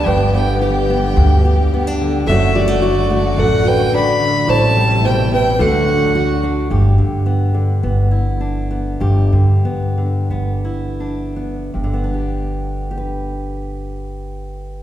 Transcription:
Already playing: D3 G3 B3 D4 G4
0.05 G1 G2 B4 G5
0.34 B3 B4 G5
0.61 G4 B4 G5
0.90 B3
1.16 D2 G2
1.45 G4
1.74 B3
1.87 D4
2.01 D3
2.27 F#1 F#2 D3 F#3 A3 D4 F#4 A4 E5
2.31 F#4
2.55 G3 F#4 D5
2.68 A3
2.82 F#4
3.10 A3
3.36 A1 F#2 A4 F#5
3.65 F#4 B4 G5
3.93 D4 D5 B5
4.20 D3
4.47 A1 A2 C3 G3 E4 C5 A5
4.76 G3
5.03 B2 C5 G5
5.31 C3 B4 G5
5.58 D2 D3 F#3 A3 D4 F#4 A4 F#5
5.88 D4
6.15 F#4
6.43 D4
6.70 G1 G2 G4
6.98 G2 D3
7.26 B3
7.54 D3
7.83 G1 B3
8.11 E4
8.41 D4
8.70 B3
9.00 G1 G2 G4
9.32 G2 D3
9.65 B3
9.98 D3
10.30 G1 B3
10.65 E4
11.00 D4
11.36 B3
11.74 G1 G2
11.84 D3
11.94 B3
12.04 D4
12.14 G4
12.91 G4
12.97 B4

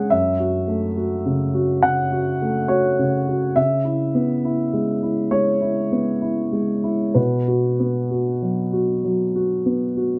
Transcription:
Already playing: G#3 C#4 G#4 F#5
0.10 F#2 E5
0.40 F#4
0.68 A3
0.97 F#4
1.26 C#3
1.54 F#4
1.83 C#3 F#5
2.12 F#4
2.42 A3
2.68 F#4 C#5
2.99 C#3
3.28 F#4
3.56 C#3 E5
3.85 E4
4.15 B3
4.45 E4
4.73 G#3
5.03 E4
5.31 G#3 C#5
5.61 E4
5.92 B3
6.22 E4
6.52 G#3
6.84 E4
7.14 B2 B4
7.48 F#4
7.80 B3
8.11 F#4
8.42 F#3
8.73 F#4
9.05 F#3
9.36 F#4
9.66 B3
9.97 F#4

